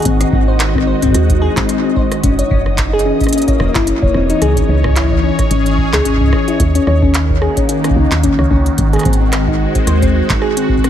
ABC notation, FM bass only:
X:1
M:4/4
L:1/16
Q:"Swing 16ths" 1/4=110
K:G#phr
V:1 name="FM bass" clef=bass
G,,, z G,,,4 z2 D,,2 z G,,, z4 | F,,, z F,,,4 z4 E,,, F,,, z E,,, E,,, z | C,, z C,,4 z2 G,,,2 z C,, z4 | D,, z D,,4 z4 C,, D,, z C,, C,, z |
G,,, z G,,,4 z2 D,,2 z G,,, z4 |]